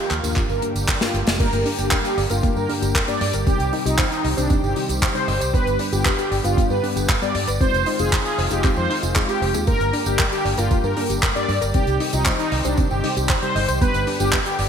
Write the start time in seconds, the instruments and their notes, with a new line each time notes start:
Already playing: analog synth pad D#3 F3 A#3 F4, analog polysynth G4
0.11 fingered electric bass D#2, clap, closed hi-hat
0.24 fingered electric bass D#2, tine electric piano G2 A#3 D4 G4 A#4, analog polysynth F4, closed hi-hat, tambourine
0.36 analog synth pad D3 G3 G4, kick, clap, closed hi-hat
0.49 fingered electric bass G1, analog polysynth A#4, tambourine
0.62 tine electric piano G2 A#3 D4 G4 A#4, closed hi-hat
0.75 fingered electric bass G1, closed hi-hat, tambourine
0.88 kick, clap, closed hi-hat
1.01 tine electric piano G2 A#3 D4 G4 A#4, analog polysynth F4, snare, closed hi-hat
1.14 fingered electric bass G1, closed hi-hat
1.27 fingered electric bass F1, snare, closed hi-hat, tambourine
1.40 tine electric piano G2 A#3 D4 G4 A#4, analog synth pad D3 G3 A#3 G4, synth arpeggio sound A#3, analog polysynth A#4, kick, closed hi-hat, crash, tambourine
1.53 fingered electric bass G1, closed hi-hat, tambourine
1.66 synth arpeggio sound D4, open hi-hat
1.79 fingered electric bass G1, tine electric piano G2 A#3 D4 G4 A#4, synth arpeggio sound G4, analog polysynth G4, closed hi-hat, tambourine
1.91 synth arpeggio sound A#4, kick, clap, closed hi-hat, tambourine
2.05 analog polysynth G4, closed hi-hat, tambourine
2.18 fingered electric bass G1, synth arpeggio sound D5, open hi-hat
2.30 fingered electric bass G1, tine electric piano G2 A#3 D4 G4 A#4, analog polysynth F4, synth arpeggio sound A#4, closed hi-hat, tambourine
2.43 synth arpeggio sound A#3, kick, closed hi-hat, tambourine
2.56 fingered electric bass G2, analog polysynth A#4, tambourine
2.69 tine electric piano G2 A#3 D4 G4 A#4, synth arpeggio sound D4, open hi-hat
2.82 fingered electric bass G1, synth arpeggio sound G4, closed hi-hat, tambourine
2.95 synth arpeggio sound A#4, kick, clap, closed hi-hat
3.08 tine electric piano G2 A#3 D4 G4 A#4, analog polysynth D5, closed hi-hat, tambourine
3.21 fingered electric bass G2, synth arpeggio sound D5, open hi-hat
3.33 fingered electric bass G1, synth arpeggio sound A#4, closed hi-hat, tambourine
3.47 tine electric piano C3 G3 C4 D#4 G4, analog synth pad D#3 C4, synth arpeggio sound C4, analog polysynth G4, kick, closed hi-hat, tambourine
3.60 fingered electric bass C2, closed hi-hat, tambourine
3.73 synth arpeggio sound D#4, open hi-hat
3.86 fingered electric bass C2, tine electric piano C3 G3 C4 D#4 F4, analog polysynth D#4, synth arpeggio sound G4, closed hi-hat, tambourine
3.98 synth arpeggio sound C5, kick, clap, closed hi-hat, tambourine
4.11 analog polysynth D#4, closed hi-hat, tambourine
4.24 fingered electric bass C2, synth arpeggio sound D#5, open hi-hat
4.37 fingered electric bass C2, tine electric piano C3 G3 C4 D#4 G4, analog polysynth D4, synth arpeggio sound C5, closed hi-hat, tambourine
4.50 synth arpeggio sound C4, kick, closed hi-hat, tambourine
4.63 fingered electric bass G1, analog polysynth G4, tambourine
4.76 tine electric piano C3 G3 C4 D#4 G4, synth arpeggio sound D#4, open hi-hat
4.89 fingered electric bass C2, synth arpeggio sound G4, closed hi-hat, tambourine
5.02 synth arpeggio sound C5, kick, clap, closed hi-hat
5.15 tine electric piano C3 G3 C4 D#4 G4, analog polysynth C5, closed hi-hat, tambourine
5.28 fingered electric bass G1, synth arpeggio sound D#5, open hi-hat
5.41 fingered electric bass C2, synth arpeggio sound C5, closed hi-hat, tambourine
5.54 tine electric piano G2 G3 B3 D4 G4, analog synth pad D3 B3, synth arpeggio sound B3, analog polysynth B4, kick, closed hi-hat, tambourine
5.67 fingered electric bass G1, closed hi-hat, tambourine
5.79 synth arpeggio sound D4, open hi-hat
5.93 fingered electric bass G1, tine electric piano G2 G3 B3 D4 F4, synth arpeggio sound G4, analog polysynth G4, closed hi-hat, tambourine
6.05 synth arpeggio sound B4, kick, clap, closed hi-hat, tambourine
6.18 analog polysynth G4, closed hi-hat, tambourine
6.31 fingered electric bass G1, synth arpeggio sound D5, open hi-hat
6.44 fingered electric bass G1, tine electric piano G2 G3 B3 D4 G4, analog polysynth F4, synth arpeggio sound B4, closed hi-hat, tambourine
6.57 synth arpeggio sound B3, kick, closed hi-hat, tambourine
6.70 fingered electric bass G2, analog polysynth B4, tambourine
6.83 tine electric piano G2 G3 B3 D4 G4, synth arpeggio sound D4, open hi-hat
6.96 fingered electric bass G1, synth arpeggio sound G4, closed hi-hat, tambourine
7.09 synth arpeggio sound B4, kick, clap, closed hi-hat
7.21 tine electric piano G2 G3 B3 D4 G4, analog polysynth D5, closed hi-hat, tambourine
7.35 fingered electric bass G2, synth arpeggio sound D5, open hi-hat
7.47 fingered electric bass G1, synth arpeggio sound B4, closed hi-hat, tambourine
7.61 analog synth pad D#3 G#3 C4 F4, tine electric piano G#3 C4 D#4 F4, synth arpeggio sound C4, analog polysynth C5, kick, closed hi-hat, tambourine
7.74 fingered electric bass F1, closed hi-hat, tambourine
7.86 synth arpeggio sound D#4, open hi-hat
7.99 fingered electric bass F1, tine electric piano G#3 C4 D#4 F4, synth arpeggio sound F4, analog polysynth G#4, closed hi-hat, tambourine
8.12 synth arpeggio sound G#4, kick, clap
8.25 analog polysynth G#4, closed hi-hat, tambourine
8.38 fingered electric bass F1, synth arpeggio sound C5, open hi-hat
8.51 fingered electric bass F1, tine electric piano G#3 C4 D#4 F4, analog polysynth G4, synth arpeggio sound G#4, closed hi-hat, tambourine
8.64 synth arpeggio sound C4, kick, clap, closed hi-hat, tambourine
8.76 fingered electric bass F2, analog polysynth C5, tambourine
8.90 synth arpeggio sound D#4, open hi-hat
9.03 fingered electric bass F1, synth arpeggio sound F4, closed hi-hat, tambourine
9.16 tine electric piano G#3 C4 D#4 F4, synth arpeggio sound G#4, kick, clap, closed hi-hat
9.29 analog polysynth G4, closed hi-hat, tambourine
9.42 fingered electric bass F1, synth arpeggio sound C5, open hi-hat
9.54 fingered electric bass D#2, tine electric piano G#3 C4 D#4 F4, synth arpeggio sound G#4, closed hi-hat, tambourine
9.67 tine electric piano G2 A#3 D4 A#4, analog synth pad D3 G3 A#3 G4, synth arpeggio sound A#3, analog polysynth A#4, kick, closed hi-hat, tambourine
9.80 fingered electric bass G1, closed hi-hat, tambourine
9.93 synth arpeggio sound D4, open hi-hat
10.06 fingered electric bass G1, tine electric piano G2 A#3 D4 G4 A#4, synth arpeggio sound G4, analog polysynth G4, closed hi-hat, tambourine
10.19 synth arpeggio sound A#4, kick, clap, closed hi-hat, tambourine
10.32 analog polysynth G4, closed hi-hat, tambourine
10.45 fingered electric bass G1, synth arpeggio sound D5, open hi-hat
10.57 fingered electric bass G1, tine electric piano G2 A#3 D4 G4 A#4, analog polysynth F4, synth arpeggio sound A#4, closed hi-hat, tambourine
10.71 synth arpeggio sound A#3, kick, closed hi-hat, tambourine
10.84 fingered electric bass G2, analog polysynth A#4, tambourine
10.97 tine electric piano G2 A#3 D4 G4 A#4, synth arpeggio sound D4, open hi-hat
11.10 fingered electric bass G1, synth arpeggio sound G4, closed hi-hat, tambourine
11.22 synth arpeggio sound A#4, kick, clap, closed hi-hat, tambourine
11.36 tine electric piano G2 A#3 D4 G4 A#4, analog polysynth D5, closed hi-hat, tambourine
11.49 fingered electric bass G2, synth arpeggio sound D5, open hi-hat
11.61 fingered electric bass G1, synth arpeggio sound A#4, closed hi-hat, tambourine
11.74 tine electric piano C3 G3 C4 D#4 G4, analog synth pad D#3 C4 G4, synth arpeggio sound C4, analog polysynth G4, kick, closed hi-hat, tambourine
11.87 fingered electric bass C2, closed hi-hat, tambourine
12.00 synth arpeggio sound D#4, open hi-hat
12.13 fingered electric bass C2, tine electric piano C3 G3 C4 D#4 F4, analog polysynth D#4, synth arpeggio sound G4, closed hi-hat, tambourine
12.25 synth arpeggio sound C5, kick, clap, closed hi-hat
12.39 analog polysynth D#4, closed hi-hat, tambourine
12.52 fingered electric bass C2, synth arpeggio sound D#5, open hi-hat
12.65 fingered electric bass C2, tine electric piano C3 G3 C4 D#4 G4, analog polysynth D4, synth arpeggio sound C5, closed hi-hat, tambourine
12.77 synth arpeggio sound C4, kick, closed hi-hat, tambourine
12.91 fingered electric bass G1, analog polysynth G4, tambourine
13.04 tine electric piano C3 G3 C4 D#4 G4, synth arpeggio sound D#4, open hi-hat
13.17 fingered electric bass C2, synth arpeggio sound G4, closed hi-hat, tambourine
13.29 synth arpeggio sound C5, kick, clap, closed hi-hat, tambourine
13.42 tine electric piano C3 G3 C4 D#4 G4, analog polysynth C5, closed hi-hat, tambourine
13.55 fingered electric bass G1, synth arpeggio sound D#5, open hi-hat
13.68 fingered electric bass C2, synth arpeggio sound C5, closed hi-hat, tambourine
13.81 tine electric piano G2 G3 B3 D4 G4, analog synth pad D3 B3, synth arpeggio sound B3, analog polysynth B4, kick, closed hi-hat, tambourine
13.94 fingered electric bass G1, closed hi-hat, tambourine
14.07 synth arpeggio sound D4, open hi-hat
14.20 fingered electric bass G1, tine electric piano G2 G3 B3 D4 F4, analog polysynth G4, synth arpeggio sound G4, closed hi-hat, tambourine
14.33 synth arpeggio sound B4, kick, clap, closed hi-hat
14.45 analog polysynth G4, closed hi-hat, tambourine
14.59 fingered electric bass G1, synth arpeggio sound D5, open hi-hat